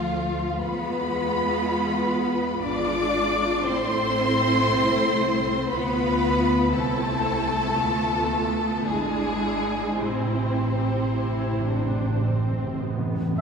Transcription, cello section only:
0.00 0.60 F3 medium
0.60 2.61 B3 medium
2.61 3.63 D4 medium
3.66 5.70 C4 medium
5.70 6.70 B3 medium
6.73 8.83 A3 medium
8.88 9.96 G#3 medium
9.99 12.85 C3 medium

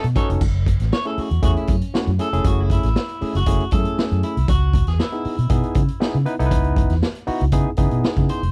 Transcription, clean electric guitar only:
0.04 muted clean electric guitar stroke soft
0.15 0.30 B3 medium
0.15 0.29 D#4 medium
0.15 0.29 A4 medium
0.15 0.28 C#5 medium
0.30 muted clean electric guitar stroke medium
0.93 1.07 C#5 loud
1.07 1.19 A4 medium
1.19 1.43 F#4 medium
1.45 1.50 F#4 loud
1.57 1.69 E4 medium
1.69 1.94 C#4 medium
2.21 2.46 A4 loud
2.47 2.60 F#4 medium
2.60 2.71 E4 medium
2.72 3.36 E4 loud
3.36 3.72 F#4 loud
3.72 4.23 A4 loud
4.24 4.49 E4 medium
4.49 4.88 F#4 loud
4.88 5.00 G#4 medium
5.00 6.23 E4 medium
8.30 8.52 C5 loud

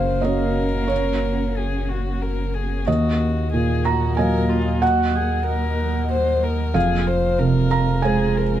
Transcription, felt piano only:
0.00 0.86 F#2 soft
0.00 0.64 C#3 soft
0.00 0.92 A#4 medium
0.00 0.21 F5 medium
0.22 2.83 A#3 soft
0.22 2.83 F#4 soft
0.22 0.86 C#5 soft
0.22 0.85 D#5 soft
0.88 2.82 C#5 medium
2.88 4.78 D#2 soft
2.88 3.81 D#5 medium
3.54 4.57 A#2 soft
3.85 4.15 A#5 medium
4.17 6.72 F#3 soft
4.17 6.72 A#3 soft
4.17 6.72 D#5 soft
4.17 4.77 G#5 medium
4.82 6.71 F#5 medium
6.74 8.60 F2 soft
6.74 7.67 F5 medium
7.39 8.42 C3 soft
7.71 8.01 A#5 medium
8.02 8.60 G#3 soft
8.02 8.60 G#4 soft
8.02 8.60 C5 soft
8.02 8.60 G#5 medium

